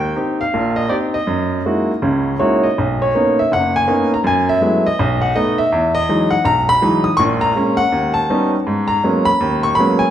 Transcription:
0.00 0.12 D#2 medium
0.00 0.13 G5 medium
0.16 0.41 C4 soft
0.16 0.41 D#4 soft
0.16 0.42 G4 soft
0.41 0.78 F5 medium
0.54 0.86 A#1 medium
0.54 0.86 A#2 medium
0.76 0.91 D#5 medium
0.89 1.15 C4 medium
0.89 1.15 D#4 soft
0.89 1.15 G4 medium
0.89 0.95 D5 medium
1.14 2.36 D#5 medium
1.27 1.59 F#2 medium
1.65 1.90 G#3 soft
1.65 1.90 A#3 soft
1.65 1.90 D#4 soft
1.65 1.90 E4 soft
1.65 1.91 F#4 soft
2.02 2.35 C#2 medium
2.02 2.35 C#3 medium
2.39 2.65 G#3 medium
2.39 2.66 A#3 soft
2.39 2.66 D#4 soft
2.39 2.66 E4 soft
2.39 2.66 F#4 medium
2.39 2.65 C#5 medium
2.63 3.02 D#5 medium
2.78 3.10 B1 medium
3.02 3.40 C#5 medium
3.15 3.40 A#3 soft
3.15 3.40 B3 soft
3.15 3.40 C#4 soft
3.15 3.40 D#4 medium
3.39 3.53 E5 medium
3.52 3.84 F#1 medium
3.52 3.75 F#5 medium
3.76 4.10 G#5 medium
3.88 4.13 A#3 medium
3.88 4.13 B3 medium
3.88 4.13 C#4 medium
3.88 4.13 D#4 medium
4.14 4.19 A#5 medium
4.24 4.56 F#2 medium
4.24 4.48 G#5 medium
4.49 4.87 E5 medium
4.61 4.86 F#3 medium
4.61 4.86 G#3 soft
4.61 4.86 A3 soft
4.61 4.87 B3 soft
4.61 4.87 E4 medium
4.86 5.20 D#5 medium
4.99 5.30 B1 medium
5.22 5.35 F#5 medium
5.36 5.60 A3 medium
5.36 5.60 B3 medium
5.36 5.60 D#4 medium
5.36 5.57 D#5 medium
5.58 5.92 E5 medium
5.72 6.03 E2 medium
5.95 6.32 D#5 medium
6.09 6.33 E3 medium
6.09 6.33 F#3 soft
6.09 6.33 G#3 medium
6.09 6.33 D#4 medium
6.31 6.45 F#5 medium
6.45 6.76 B1 medium
6.45 6.67 A#5 loud
6.69 7.03 B5 loud
6.82 7.07 E3 medium
6.82 7.06 F#3 medium
6.82 7.07 G#3 soft
6.82 7.07 D#4 medium
7.04 7.17 D#6 medium
7.17 7.50 A#1 medium
7.17 7.50 A#2 medium
7.17 7.22 C#6 loud
7.41 7.75 A#5 medium
7.56 7.80 G#3 soft
7.56 7.80 A#3 soft
7.56 7.80 C#4 medium
7.77 8.12 F#5 loud
7.92 8.24 D#2 medium
8.14 8.49 A5 medium
8.30 8.54 G3 soft
8.30 8.55 B3 soft
8.30 8.55 C#4 medium
8.30 8.55 D#4 medium
8.67 8.99 G#2 medium
8.88 9.27 A#5 medium
9.04 9.29 F#3 soft
9.04 9.29 G#3 soft
9.04 9.29 A#3 soft
9.04 9.29 B3 soft
9.04 9.29 C#4 medium
9.25 9.65 B5 loud
9.40 9.73 D#2 medium
9.63 9.76 C#6 medium
9.75 10.03 F#3 medium
9.75 10.03 G#3 medium
9.75 10.01 B5 loud
9.79 10.03 A#3 soft
9.79 10.04 B3 medium
9.79 10.04 C#4 medium
9.99 10.11 G#5 medium

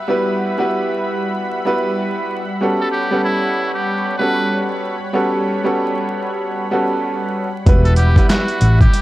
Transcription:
0.00 7.63 G3 medium
0.00 2.58 E5 medium
0.00 7.63 F#5 medium
0.00 7.63 B5 medium
0.08 0.54 G3 loud
0.08 0.54 B3 medium
0.08 0.55 E4 medium
0.08 0.55 F#4 medium
0.08 0.55 B4 loud
0.58 1.59 G3 loud
0.58 1.59 B3 medium
0.58 1.59 E4 loud
0.58 1.60 F#4 medium
0.58 1.60 B4 loud
1.65 2.40 G3 medium
1.65 2.41 B3 medium
1.65 2.41 E4 medium
1.65 2.41 F#4 medium
1.65 2.41 B4 loud
2.61 3.07 G3 medium
2.61 3.07 B3 medium
2.61 3.08 C#4 medium
2.61 3.08 F#4 medium
2.61 3.08 A4 loud
2.61 7.63 C#5 medium
2.81 2.91 A4 medium
2.91 3.20 G4 medium
3.11 4.12 G3 loud
3.11 4.12 B3 medium
3.11 4.12 C#4 medium
3.11 4.13 A4 loud
3.11 4.12 F#5 medium
3.24 3.72 E4 medium
3.74 4.16 G4 medium
4.18 4.94 G3 medium
4.18 4.94 B3 medium
4.18 4.94 C#4 medium
4.18 4.95 F#4 medium
4.18 4.95 A4 loud
4.18 4.66 B4 medium
5.13 5.59 G3 medium
5.13 5.60 B3 medium
5.13 5.60 C#4 medium
5.13 5.60 F#4 medium
5.13 5.61 A4 loud
5.64 6.64 G3 loud
5.64 6.65 B3 medium
5.64 6.65 C#4 medium
5.64 6.65 F#4 medium
5.64 6.66 A4 loud
6.71 7.46 G3 loud
6.71 7.46 B3 medium
6.71 7.47 C#4 medium
6.71 7.47 F#4 medium
6.71 7.47 A4 loud
7.66 8.15 E1 loud
7.66 8.12 G3 medium
7.66 9.02 G3 medium
7.66 8.13 B3 medium
7.66 8.13 E4 medium
7.66 8.13 F#4 medium
7.66 8.13 B4 loud
7.66 9.02 E5 medium
7.66 9.02 F#5 medium
7.66 9.02 B5 medium
7.66 kick loud
7.66 closed hi-hat medium
7.84 7.96 A4 medium
7.84 closed hi-hat soft
7.96 8.26 G4 medium
7.96 closed hi-hat medium
8.16 9.02 G3 loud
8.16 9.02 B3 medium
8.16 9.02 E4 medium
8.16 9.02 B4 loud
8.16 9.02 F#5 medium
8.16 kick medium
8.16 closed hi-hat medium
8.29 8.77 F#4 medium
8.29 snare loud
8.29 clap loud
8.29 closed hi-hat loud
8.48 closed hi-hat soft
8.61 8.86 A1 loud
8.61 closed hi-hat medium
8.81 9.02 G4 medium
8.81 kick loud
8.81 closed hi-hat medium
8.94 closed hi-hat loud

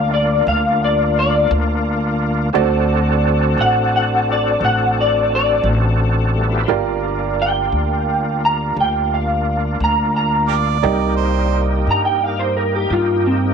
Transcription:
0.00 0.44 D2 loud
0.00 2.50 A#3 medium
0.00 2.50 D4 medium
0.00 2.50 F4 medium
0.00 2.51 A4 medium
0.00 2.51 A#4 medium
0.00 2.51 D5 medium
0.00 0.13 F5 loud
0.14 0.47 D5 loud
0.47 1.46 D2 medium
0.47 0.81 F5 loud
0.84 1.17 D5 medium
1.19 1.51 D5 loud
1.51 2.50 D2 loud
2.53 3.54 D2 loud
2.53 6.43 C4 medium
2.53 6.45 D4 medium
2.53 6.64 F#4 medium
2.53 6.57 A4 medium
2.53 6.64 A4 medium
2.53 6.64 C5 medium
2.53 6.65 D5 medium
3.57 4.57 A1 medium
3.57 3.93 F#5 loud
3.96 4.28 F#5 loud
4.32 4.63 D5 medium
4.61 5.60 A1 medium
4.61 4.96 F#5 loud
5.01 5.32 D5 medium
5.35 5.66 D5 loud
5.64 6.64 A1 loud
6.35 6.60 G3 medium
6.35 6.61 A3 medium
6.42 6.63 B3 medium
6.42 6.64 C4 medium
6.46 6.64 D4 medium
6.46 6.67 E4 medium
6.52 6.65 F4 medium
6.52 6.70 G4 medium
6.58 6.71 A4 medium
6.58 6.73 B4 medium
6.64 10.78 A#3 medium
6.64 10.78 D4 medium
6.64 10.78 F4 medium
6.64 6.74 C5 medium
6.68 7.68 G1 medium
6.68 10.79 F4 medium
6.68 10.80 G4 medium
6.68 10.80 A#4 medium
6.68 10.80 D5 medium
7.42 8.40 G5 medium
7.72 8.72 D2 medium
8.45 8.77 A#5 medium
8.77 9.76 D2 medium
8.77 9.12 G5 medium
9.14 9.79 F5 medium
9.80 10.80 D2 medium
9.80 10.15 A#5 medium
10.16 10.49 A#5 medium
10.48 10.55 G4 medium
10.48 10.56 A#4 medium
10.48 11.16 D5 loud
10.83 11.83 C2 loud
10.83 13.54 A#3 medium
10.83 13.54 D#4 medium
10.83 13.54 G4 medium
10.83 13.54 A#4 medium
10.83 13.54 D5 medium
11.17 11.68 C5 medium
11.87 12.87 G2 medium
11.87 12.05 A#5 medium
12.05 12.23 G5 medium
12.23 12.39 F5 medium
12.39 12.56 C5 medium
12.57 12.75 A#4 medium
12.75 12.91 G4 medium
12.90 13.54 G2 medium
12.90 13.26 F4 medium
13.26 13.54 C4 medium

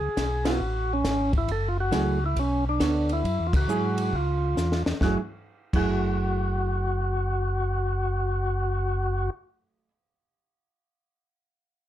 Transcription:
0.00 0.09 C#2 soft
0.00 0.51 G#4 loud
0.17 0.60 B1 medium
0.17 kick soft
0.17 snare medium
0.17 hi-hat pedal medium
0.17 ride medium
0.45 0.59 B3 medium
0.45 0.59 E4 medium
0.45 0.60 F4 medium
0.45 snare medium
0.45 ride medium
0.50 0.93 F#4 medium
0.60 1.03 A1 medium
0.93 1.33 C#4 loud
1.04 1.47 G#1 medium
1.04 kick soft
1.04 snare medium
1.04 hi-hat pedal medium
1.04 ride medium
1.33 kick medium
1.33 ride soft
1.38 1.51 E4 medium
1.48 1.91 F#1 medium
1.48 1.69 A4 loud
1.48 kick soft
1.48 ride medium
1.68 1.78 F4 medium
1.80 2.24 F#4 loud
1.91 2.35 C#2 medium
1.91 2.18 F#3 medium
1.91 2.18 A3 medium
1.91 2.18 E4 medium
1.91 2.19 G#4 medium
1.91 kick soft
1.91 snare medium
1.91 hi-hat pedal medium
1.91 ride medium
2.26 2.39 E4 medium
2.36 2.79 B1 medium
2.36 2.65 C#4 medium
2.36 kick soft
2.36 ride medium
2.69 3.13 D4 medium
2.80 3.23 D2 medium
2.80 3.24 B3 medium
2.80 3.24 D4 medium
2.80 3.24 A4 medium
2.80 3.25 C#5 medium
2.80 kick soft
2.80 snare medium
2.80 hi-hat pedal soft
2.80 ride medium
3.09 3.47 E4 loud
3.09 ride soft
3.24 3.39 F#2 medium
3.24 kick soft
3.24 ride medium
3.40 3.54 E2 soft
3.47 3.55 F4 medium
3.53 3.68 C#2 medium
3.53 4.16 F#4 medium
3.53 kick medium
3.53 ride medium
3.68 4.11 G#2 medium
3.68 4.12 F#3 medium
3.68 4.13 E4 medium
3.68 4.13 G#4 medium
3.68 hi-hat pedal soft
3.98 ride medium
4.13 4.55 C#2 medium
4.13 4.83 F4 medium
4.13 kick soft
4.57 4.84 E2 medium
4.57 snare soft
4.57 hi-hat pedal medium
4.72 snare medium
4.86 4.93 E2 soft
4.86 snare medium
5.01 5.17 F#1 medium
5.01 5.18 F#3 medium
5.01 5.19 A3 medium
5.01 5.19 E4 medium
5.01 5.18 F#4 medium
5.01 5.19 G#4 medium
5.01 kick medium
5.01 snare medium
5.73 9.29 F#1 medium
5.73 9.88 F#3 medium
5.73 9.89 A3 medium
5.73 9.90 E4 medium
5.73 9.30 F#4 medium
5.73 9.91 G#4 medium
5.73 kick medium
5.73 crash medium

